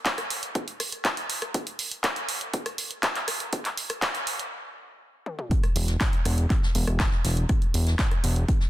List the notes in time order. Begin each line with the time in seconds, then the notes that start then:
0.06 kick, clap, closed hi-hat
0.18 cross-stick, closed hi-hat
0.30 open hi-hat
0.43 closed hi-hat
0.55 kick, closed hi-hat
0.68 closed hi-hat
0.80 cross-stick, open hi-hat
0.92 closed hi-hat
1.05 kick, clap, closed hi-hat
1.17 closed hi-hat
1.30 open hi-hat
1.42 cross-stick, closed hi-hat
1.54 kick, closed hi-hat
1.67 closed hi-hat
1.79 open hi-hat
1.91 closed hi-hat
2.04 kick, cross-stick, clap, closed hi-hat
2.16 closed hi-hat
2.29 open hi-hat
2.41 closed hi-hat
2.54 kick, closed hi-hat
2.66 cross-stick, closed hi-hat
2.78 open hi-hat
2.91 closed hi-hat
3.03 kick, clap, closed hi-hat
3.15 clap, closed hi-hat
3.28 cross-stick, open hi-hat
3.40 closed hi-hat
3.53 kick, closed hi-hat
3.65 clap, closed hi-hat
3.77 open hi-hat
3.90 cross-stick, closed hi-hat
4.02 kick, clap, closed hi-hat
4.15 closed hi-hat
4.27 open hi-hat
4.39 closed hi-hat
5.26 high tom
5.39 mid tom
5.51 kick, closed hi-hat
5.63 cross-stick, closed hi-hat
5.75 E1, closed hi-hat, open hi-hat
5.87 snare, closed hi-hat
6.01 kick, snare, clap, closed hi-hat
6.13 closed hi-hat
6.25 E1, cross-stick, closed hi-hat, open hi-hat
6.37 closed hi-hat
6.50 kick, clap, closed hi-hat
6.63 snare
6.75 E1, closed hi-hat, open hi-hat
6.87 E1, cross-stick, closed hi-hat
7.00 kick, snare, clap, closed hi-hat
7.11 snare
7.24 E1, snare, closed hi-hat, open hi-hat
7.37 closed hi-hat
7.49 kick, cross-stick, closed hi-hat
7.62 closed hi-hat
7.74 E1, closed hi-hat, open hi-hat
7.87 snare, closed hi-hat
7.98 kick, snare, clap, closed hi-hat
8.11 cross-stick, closed hi-hat
8.24 E1, closed hi-hat, open hi-hat
8.36 closed hi-hat
8.48 kick, closed hi-hat
8.60 snare